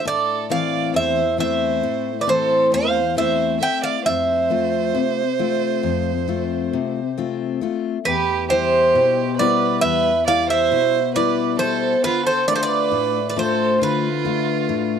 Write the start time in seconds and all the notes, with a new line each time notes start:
0.05 A2 A4 D5
0.50 E3 A3 C4 D5 F5
0.94 E2 C5 E5
1.38 A3 C4 E4 C5 E5
1.83 A2
2.21 B4 D5
2.27 E3 A3 C4 A4 C5
2.72 E2 C5 F5
3.17 A3 C4 E4 C5 E5
3.60 A3 C4 E4 E5 G5
3.83 D5 F5
4.05 F2 C5 E5
4.50 A3 C4 F4
4.95 C3
5.39 A3 C4 F4
5.83 F2
6.28 A3 C4 F4
6.73 C3
7.18 A3 C4 F4
7.61 A3 C4 F4
8.05 E2 G4 B4
8.48 G3 E4 G4 C5
8.95 B2
9.37 G3 B3 E4 B4 D5
9.81 E2 B4 E5
10.27 G3 E4 D5 F5
10.49 C5 E5
10.72 B2
11.14 G3 E4 B4 D5
11.59 B2 G3 E4 A4 C5
12.04 D3 F4 B4
12.26 A4 C5
12.48 A3 D4 F4 B4 D5
12.54 A4 C5
12.63 B4 D5
12.92 A2
13.30 B4 D5
13.36 A3 D4 F4 A4 C5
13.81 D3 F4 B4
14.25 A3 D4 F4
14.69 A2